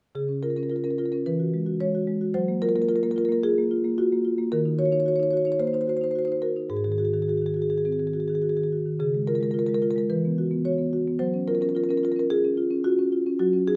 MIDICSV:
0, 0, Header, 1, 2, 480
1, 0, Start_track
1, 0, Tempo, 544959
1, 139, Time_signature, 4, 2, 24, 8
1, 5416, Tempo, 568182
1, 8296, Tempo, 546448
1, 11990, End_track
2, 0, Start_track
2, 0, Title_t, "Marimba"
2, 0, Program_c, 0, 12
2, 131, Note_on_c, 0, 49, 34
2, 135, Note_on_c, 0, 68, 44
2, 252, Note_on_c, 0, 61, 26
2, 371, Note_off_c, 0, 68, 0
2, 375, Note_on_c, 0, 70, 43
2, 378, Note_on_c, 0, 65, 30
2, 442, Note_off_c, 0, 70, 0
2, 442, Note_on_c, 0, 70, 33
2, 451, Note_off_c, 0, 61, 0
2, 497, Note_off_c, 0, 70, 0
2, 497, Note_on_c, 0, 70, 37
2, 508, Note_on_c, 0, 61, 28
2, 553, Note_off_c, 0, 70, 0
2, 553, Note_on_c, 0, 70, 35
2, 574, Note_off_c, 0, 65, 0
2, 612, Note_off_c, 0, 70, 0
2, 612, Note_on_c, 0, 70, 36
2, 625, Note_on_c, 0, 65, 28
2, 670, Note_off_c, 0, 70, 0
2, 670, Note_on_c, 0, 70, 34
2, 699, Note_off_c, 0, 61, 0
2, 739, Note_off_c, 0, 70, 0
2, 739, Note_on_c, 0, 70, 38
2, 745, Note_on_c, 0, 61, 28
2, 798, Note_off_c, 0, 70, 0
2, 798, Note_on_c, 0, 70, 36
2, 817, Note_off_c, 0, 65, 0
2, 866, Note_off_c, 0, 70, 0
2, 866, Note_on_c, 0, 70, 38
2, 871, Note_on_c, 0, 65, 32
2, 929, Note_off_c, 0, 70, 0
2, 929, Note_on_c, 0, 70, 34
2, 937, Note_off_c, 0, 61, 0
2, 985, Note_off_c, 0, 70, 0
2, 985, Note_on_c, 0, 70, 35
2, 992, Note_on_c, 0, 61, 27
2, 1060, Note_off_c, 0, 65, 0
2, 1072, Note_off_c, 0, 49, 0
2, 1072, Note_off_c, 0, 70, 0
2, 1108, Note_off_c, 0, 61, 0
2, 1112, Note_on_c, 0, 52, 38
2, 1112, Note_on_c, 0, 71, 49
2, 1230, Note_on_c, 0, 66, 28
2, 1354, Note_on_c, 0, 56, 30
2, 1419, Note_off_c, 0, 66, 0
2, 1466, Note_on_c, 0, 66, 31
2, 1542, Note_off_c, 0, 56, 0
2, 1570, Note_off_c, 0, 71, 0
2, 1589, Note_on_c, 0, 56, 33
2, 1590, Note_on_c, 0, 73, 52
2, 1658, Note_off_c, 0, 66, 0
2, 1717, Note_on_c, 0, 66, 32
2, 1780, Note_off_c, 0, 56, 0
2, 1828, Note_on_c, 0, 56, 31
2, 1904, Note_off_c, 0, 66, 0
2, 1949, Note_on_c, 0, 66, 32
2, 2019, Note_off_c, 0, 56, 0
2, 2041, Note_off_c, 0, 52, 0
2, 2049, Note_off_c, 0, 73, 0
2, 2063, Note_on_c, 0, 54, 45
2, 2063, Note_on_c, 0, 72, 61
2, 2067, Note_off_c, 0, 66, 0
2, 2188, Note_on_c, 0, 58, 31
2, 2295, Note_off_c, 0, 72, 0
2, 2304, Note_on_c, 0, 65, 35
2, 2306, Note_on_c, 0, 70, 59
2, 2368, Note_off_c, 0, 70, 0
2, 2368, Note_on_c, 0, 70, 47
2, 2379, Note_off_c, 0, 58, 0
2, 2428, Note_off_c, 0, 70, 0
2, 2428, Note_on_c, 0, 70, 51
2, 2429, Note_on_c, 0, 58, 34
2, 2482, Note_off_c, 0, 70, 0
2, 2482, Note_on_c, 0, 70, 48
2, 2498, Note_off_c, 0, 65, 0
2, 2542, Note_off_c, 0, 70, 0
2, 2542, Note_on_c, 0, 70, 51
2, 2545, Note_on_c, 0, 65, 32
2, 2605, Note_off_c, 0, 70, 0
2, 2605, Note_on_c, 0, 70, 45
2, 2620, Note_off_c, 0, 58, 0
2, 2669, Note_off_c, 0, 70, 0
2, 2669, Note_on_c, 0, 70, 49
2, 2673, Note_on_c, 0, 58, 33
2, 2738, Note_off_c, 0, 65, 0
2, 2740, Note_off_c, 0, 70, 0
2, 2740, Note_on_c, 0, 70, 46
2, 2784, Note_on_c, 0, 65, 37
2, 2800, Note_off_c, 0, 70, 0
2, 2800, Note_on_c, 0, 70, 51
2, 2862, Note_off_c, 0, 58, 0
2, 2862, Note_off_c, 0, 70, 0
2, 2862, Note_on_c, 0, 70, 49
2, 2895, Note_on_c, 0, 58, 32
2, 2926, Note_off_c, 0, 70, 0
2, 2926, Note_on_c, 0, 70, 50
2, 2977, Note_off_c, 0, 65, 0
2, 2996, Note_off_c, 0, 54, 0
2, 2998, Note_off_c, 0, 70, 0
2, 3025, Note_on_c, 0, 68, 60
2, 3028, Note_on_c, 0, 65, 37
2, 3092, Note_off_c, 0, 58, 0
2, 3155, Note_on_c, 0, 58, 35
2, 3219, Note_off_c, 0, 65, 0
2, 3268, Note_on_c, 0, 65, 36
2, 3342, Note_off_c, 0, 58, 0
2, 3385, Note_on_c, 0, 58, 35
2, 3457, Note_off_c, 0, 65, 0
2, 3484, Note_off_c, 0, 68, 0
2, 3504, Note_on_c, 0, 65, 34
2, 3506, Note_on_c, 0, 66, 53
2, 3576, Note_off_c, 0, 58, 0
2, 3633, Note_on_c, 0, 58, 33
2, 3695, Note_off_c, 0, 65, 0
2, 3740, Note_on_c, 0, 65, 33
2, 3820, Note_off_c, 0, 58, 0
2, 3860, Note_on_c, 0, 58, 34
2, 3933, Note_off_c, 0, 65, 0
2, 3964, Note_off_c, 0, 66, 0
2, 3980, Note_on_c, 0, 70, 58
2, 3981, Note_off_c, 0, 58, 0
2, 3986, Note_on_c, 0, 51, 45
2, 4100, Note_on_c, 0, 63, 31
2, 4210, Note_off_c, 0, 70, 0
2, 4215, Note_on_c, 0, 66, 35
2, 4216, Note_on_c, 0, 73, 58
2, 4275, Note_off_c, 0, 73, 0
2, 4275, Note_on_c, 0, 73, 45
2, 4291, Note_off_c, 0, 63, 0
2, 4333, Note_on_c, 0, 63, 33
2, 4337, Note_off_c, 0, 73, 0
2, 4337, Note_on_c, 0, 73, 47
2, 4403, Note_off_c, 0, 73, 0
2, 4403, Note_on_c, 0, 73, 45
2, 4408, Note_off_c, 0, 66, 0
2, 4457, Note_on_c, 0, 66, 34
2, 4475, Note_off_c, 0, 73, 0
2, 4475, Note_on_c, 0, 73, 49
2, 4526, Note_off_c, 0, 63, 0
2, 4542, Note_off_c, 0, 73, 0
2, 4542, Note_on_c, 0, 73, 46
2, 4576, Note_on_c, 0, 63, 32
2, 4606, Note_off_c, 0, 73, 0
2, 4606, Note_on_c, 0, 73, 48
2, 4648, Note_off_c, 0, 66, 0
2, 4673, Note_off_c, 0, 73, 0
2, 4673, Note_on_c, 0, 73, 48
2, 4696, Note_on_c, 0, 66, 33
2, 4731, Note_off_c, 0, 73, 0
2, 4731, Note_on_c, 0, 73, 47
2, 4767, Note_off_c, 0, 63, 0
2, 4801, Note_off_c, 0, 73, 0
2, 4801, Note_on_c, 0, 73, 46
2, 4816, Note_on_c, 0, 63, 29
2, 4861, Note_off_c, 0, 73, 0
2, 4861, Note_on_c, 0, 73, 51
2, 4886, Note_off_c, 0, 66, 0
2, 4903, Note_off_c, 0, 73, 0
2, 4907, Note_off_c, 0, 51, 0
2, 4928, Note_on_c, 0, 58, 33
2, 4929, Note_on_c, 0, 72, 58
2, 4997, Note_off_c, 0, 72, 0
2, 4997, Note_on_c, 0, 72, 45
2, 5006, Note_off_c, 0, 63, 0
2, 5049, Note_on_c, 0, 63, 28
2, 5058, Note_off_c, 0, 72, 0
2, 5058, Note_on_c, 0, 72, 49
2, 5116, Note_off_c, 0, 72, 0
2, 5116, Note_on_c, 0, 72, 47
2, 5123, Note_off_c, 0, 58, 0
2, 5174, Note_on_c, 0, 66, 31
2, 5191, Note_off_c, 0, 72, 0
2, 5191, Note_on_c, 0, 72, 48
2, 5245, Note_off_c, 0, 63, 0
2, 5255, Note_off_c, 0, 72, 0
2, 5255, Note_on_c, 0, 72, 46
2, 5297, Note_on_c, 0, 63, 28
2, 5317, Note_off_c, 0, 72, 0
2, 5317, Note_on_c, 0, 72, 51
2, 5368, Note_off_c, 0, 66, 0
2, 5382, Note_off_c, 0, 72, 0
2, 5382, Note_on_c, 0, 72, 47
2, 5421, Note_on_c, 0, 66, 29
2, 5447, Note_off_c, 0, 72, 0
2, 5447, Note_on_c, 0, 72, 48
2, 5488, Note_off_c, 0, 63, 0
2, 5501, Note_off_c, 0, 72, 0
2, 5501, Note_on_c, 0, 72, 47
2, 5525, Note_on_c, 0, 63, 28
2, 5559, Note_off_c, 0, 72, 0
2, 5559, Note_on_c, 0, 72, 47
2, 5607, Note_off_c, 0, 66, 0
2, 5623, Note_off_c, 0, 72, 0
2, 5644, Note_on_c, 0, 66, 27
2, 5644, Note_on_c, 0, 70, 45
2, 5719, Note_off_c, 0, 63, 0
2, 5768, Note_on_c, 0, 63, 25
2, 5839, Note_off_c, 0, 66, 0
2, 5878, Note_off_c, 0, 70, 0
2, 5878, Note_on_c, 0, 44, 36
2, 5879, Note_on_c, 0, 68, 42
2, 5890, Note_off_c, 0, 63, 0
2, 5937, Note_off_c, 0, 68, 0
2, 5937, Note_on_c, 0, 68, 33
2, 6001, Note_off_c, 0, 68, 0
2, 6001, Note_on_c, 0, 68, 38
2, 6006, Note_on_c, 0, 51, 25
2, 6065, Note_off_c, 0, 68, 0
2, 6065, Note_on_c, 0, 68, 35
2, 6119, Note_off_c, 0, 68, 0
2, 6119, Note_on_c, 0, 68, 38
2, 6129, Note_on_c, 0, 66, 29
2, 6177, Note_off_c, 0, 68, 0
2, 6177, Note_on_c, 0, 68, 33
2, 6201, Note_off_c, 0, 51, 0
2, 6248, Note_on_c, 0, 51, 27
2, 6250, Note_off_c, 0, 68, 0
2, 6250, Note_on_c, 0, 68, 35
2, 6323, Note_off_c, 0, 66, 0
2, 6324, Note_off_c, 0, 68, 0
2, 6324, Note_on_c, 0, 68, 35
2, 6372, Note_on_c, 0, 66, 26
2, 6383, Note_off_c, 0, 68, 0
2, 6383, Note_on_c, 0, 68, 34
2, 6443, Note_off_c, 0, 51, 0
2, 6451, Note_off_c, 0, 68, 0
2, 6451, Note_on_c, 0, 68, 32
2, 6488, Note_on_c, 0, 51, 24
2, 6525, Note_off_c, 0, 68, 0
2, 6525, Note_on_c, 0, 68, 37
2, 6566, Note_off_c, 0, 66, 0
2, 6592, Note_off_c, 0, 68, 0
2, 6592, Note_on_c, 0, 68, 33
2, 6612, Note_on_c, 0, 66, 26
2, 6658, Note_off_c, 0, 68, 0
2, 6658, Note_on_c, 0, 68, 36
2, 6685, Note_off_c, 0, 51, 0
2, 6725, Note_off_c, 0, 68, 0
2, 6725, Note_on_c, 0, 68, 33
2, 6732, Note_on_c, 0, 51, 23
2, 6792, Note_off_c, 0, 68, 0
2, 6792, Note_on_c, 0, 68, 36
2, 6807, Note_off_c, 0, 66, 0
2, 6822, Note_off_c, 0, 44, 0
2, 6855, Note_off_c, 0, 68, 0
2, 6855, Note_on_c, 0, 68, 32
2, 6859, Note_on_c, 0, 60, 26
2, 6914, Note_off_c, 0, 68, 0
2, 6914, Note_on_c, 0, 68, 36
2, 6928, Note_off_c, 0, 51, 0
2, 6975, Note_off_c, 0, 68, 0
2, 6975, Note_on_c, 0, 68, 34
2, 6979, Note_on_c, 0, 51, 24
2, 7040, Note_off_c, 0, 68, 0
2, 7040, Note_on_c, 0, 68, 38
2, 7053, Note_off_c, 0, 60, 0
2, 7094, Note_off_c, 0, 68, 0
2, 7094, Note_on_c, 0, 68, 36
2, 7104, Note_on_c, 0, 66, 25
2, 7148, Note_off_c, 0, 68, 0
2, 7148, Note_on_c, 0, 68, 35
2, 7174, Note_off_c, 0, 51, 0
2, 7214, Note_off_c, 0, 68, 0
2, 7214, Note_on_c, 0, 68, 33
2, 7227, Note_on_c, 0, 51, 24
2, 7276, Note_off_c, 0, 68, 0
2, 7276, Note_on_c, 0, 68, 36
2, 7297, Note_off_c, 0, 66, 0
2, 7332, Note_off_c, 0, 68, 0
2, 7332, Note_on_c, 0, 68, 32
2, 7340, Note_on_c, 0, 66, 26
2, 7398, Note_off_c, 0, 68, 0
2, 7398, Note_on_c, 0, 68, 38
2, 7419, Note_off_c, 0, 51, 0
2, 7460, Note_off_c, 0, 68, 0
2, 7460, Note_on_c, 0, 68, 34
2, 7461, Note_on_c, 0, 51, 25
2, 7516, Note_off_c, 0, 68, 0
2, 7516, Note_on_c, 0, 68, 36
2, 7537, Note_off_c, 0, 66, 0
2, 7547, Note_off_c, 0, 68, 0
2, 7591, Note_on_c, 0, 66, 26
2, 7657, Note_off_c, 0, 51, 0
2, 7702, Note_on_c, 0, 51, 25
2, 7781, Note_off_c, 0, 66, 0
2, 7821, Note_on_c, 0, 49, 41
2, 7823, Note_off_c, 0, 51, 0
2, 7825, Note_on_c, 0, 68, 52
2, 7946, Note_on_c, 0, 56, 27
2, 8052, Note_off_c, 0, 68, 0
2, 8056, Note_on_c, 0, 70, 56
2, 8057, Note_on_c, 0, 65, 30
2, 8123, Note_off_c, 0, 70, 0
2, 8123, Note_on_c, 0, 70, 42
2, 8134, Note_off_c, 0, 56, 0
2, 8168, Note_on_c, 0, 56, 29
2, 8185, Note_off_c, 0, 70, 0
2, 8185, Note_on_c, 0, 70, 45
2, 8248, Note_off_c, 0, 65, 0
2, 8256, Note_off_c, 0, 70, 0
2, 8256, Note_on_c, 0, 70, 47
2, 8280, Note_on_c, 0, 65, 32
2, 8323, Note_off_c, 0, 70, 0
2, 8323, Note_on_c, 0, 70, 48
2, 8365, Note_off_c, 0, 56, 0
2, 8389, Note_off_c, 0, 70, 0
2, 8389, Note_on_c, 0, 70, 45
2, 8409, Note_on_c, 0, 56, 29
2, 8460, Note_off_c, 0, 70, 0
2, 8460, Note_on_c, 0, 70, 50
2, 8485, Note_off_c, 0, 65, 0
2, 8525, Note_off_c, 0, 70, 0
2, 8525, Note_on_c, 0, 70, 44
2, 8530, Note_on_c, 0, 65, 31
2, 8601, Note_off_c, 0, 70, 0
2, 8601, Note_on_c, 0, 70, 47
2, 8610, Note_off_c, 0, 56, 0
2, 8648, Note_on_c, 0, 56, 29
2, 8666, Note_off_c, 0, 70, 0
2, 8666, Note_on_c, 0, 70, 45
2, 8731, Note_off_c, 0, 65, 0
2, 8754, Note_off_c, 0, 49, 0
2, 8754, Note_off_c, 0, 70, 0
2, 8769, Note_on_c, 0, 52, 42
2, 8770, Note_on_c, 0, 71, 50
2, 8778, Note_off_c, 0, 56, 0
2, 8904, Note_on_c, 0, 59, 27
2, 9020, Note_on_c, 0, 66, 33
2, 9097, Note_off_c, 0, 59, 0
2, 9132, Note_on_c, 0, 59, 31
2, 9214, Note_off_c, 0, 66, 0
2, 9238, Note_off_c, 0, 71, 0
2, 9254, Note_on_c, 0, 66, 32
2, 9256, Note_on_c, 0, 73, 51
2, 9330, Note_off_c, 0, 59, 0
2, 9374, Note_on_c, 0, 59, 29
2, 9450, Note_off_c, 0, 66, 0
2, 9501, Note_on_c, 0, 66, 35
2, 9570, Note_off_c, 0, 59, 0
2, 9628, Note_on_c, 0, 59, 31
2, 9693, Note_off_c, 0, 66, 0
2, 9705, Note_off_c, 0, 52, 0
2, 9719, Note_off_c, 0, 73, 0
2, 9731, Note_on_c, 0, 54, 39
2, 9731, Note_on_c, 0, 72, 56
2, 9745, Note_off_c, 0, 59, 0
2, 9860, Note_on_c, 0, 61, 28
2, 9967, Note_off_c, 0, 72, 0
2, 9981, Note_on_c, 0, 65, 34
2, 9981, Note_on_c, 0, 70, 56
2, 10044, Note_off_c, 0, 70, 0
2, 10044, Note_on_c, 0, 70, 44
2, 10053, Note_off_c, 0, 61, 0
2, 10100, Note_on_c, 0, 61, 33
2, 10107, Note_off_c, 0, 70, 0
2, 10107, Note_on_c, 0, 70, 47
2, 10169, Note_off_c, 0, 70, 0
2, 10169, Note_on_c, 0, 70, 42
2, 10174, Note_off_c, 0, 65, 0
2, 10221, Note_on_c, 0, 65, 36
2, 10234, Note_off_c, 0, 70, 0
2, 10234, Note_on_c, 0, 70, 47
2, 10294, Note_off_c, 0, 61, 0
2, 10297, Note_off_c, 0, 70, 0
2, 10297, Note_on_c, 0, 70, 46
2, 10343, Note_on_c, 0, 61, 33
2, 10359, Note_off_c, 0, 70, 0
2, 10359, Note_on_c, 0, 70, 49
2, 10416, Note_off_c, 0, 65, 0
2, 10419, Note_off_c, 0, 70, 0
2, 10419, Note_on_c, 0, 70, 47
2, 10471, Note_on_c, 0, 65, 37
2, 10483, Note_off_c, 0, 70, 0
2, 10483, Note_on_c, 0, 70, 47
2, 10537, Note_off_c, 0, 61, 0
2, 10544, Note_off_c, 0, 70, 0
2, 10544, Note_on_c, 0, 70, 45
2, 10583, Note_on_c, 0, 61, 31
2, 10612, Note_off_c, 0, 70, 0
2, 10612, Note_on_c, 0, 70, 50
2, 10662, Note_off_c, 0, 65, 0
2, 10672, Note_off_c, 0, 54, 0
2, 10677, Note_off_c, 0, 70, 0
2, 10706, Note_on_c, 0, 65, 33
2, 10707, Note_on_c, 0, 68, 62
2, 10778, Note_off_c, 0, 61, 0
2, 10832, Note_on_c, 0, 61, 32
2, 10900, Note_off_c, 0, 65, 0
2, 10945, Note_on_c, 0, 65, 38
2, 11023, Note_off_c, 0, 61, 0
2, 11062, Note_on_c, 0, 61, 34
2, 11139, Note_off_c, 0, 65, 0
2, 11169, Note_off_c, 0, 68, 0
2, 11181, Note_on_c, 0, 66, 53
2, 11183, Note_on_c, 0, 65, 37
2, 11257, Note_off_c, 0, 61, 0
2, 11311, Note_on_c, 0, 61, 33
2, 11377, Note_off_c, 0, 65, 0
2, 11427, Note_on_c, 0, 65, 36
2, 11500, Note_off_c, 0, 61, 0
2, 11552, Note_on_c, 0, 61, 34
2, 11617, Note_off_c, 0, 65, 0
2, 11642, Note_off_c, 0, 66, 0
2, 11665, Note_on_c, 0, 66, 56
2, 11668, Note_off_c, 0, 61, 0
2, 11668, Note_on_c, 0, 54, 44
2, 11786, Note_on_c, 0, 61, 35
2, 11891, Note_off_c, 0, 66, 0
2, 11912, Note_on_c, 0, 63, 34
2, 11912, Note_on_c, 0, 68, 63
2, 11973, Note_off_c, 0, 61, 0
2, 11990, Note_off_c, 0, 54, 0
2, 11990, Note_off_c, 0, 63, 0
2, 11990, Note_off_c, 0, 68, 0
2, 11990, End_track
0, 0, End_of_file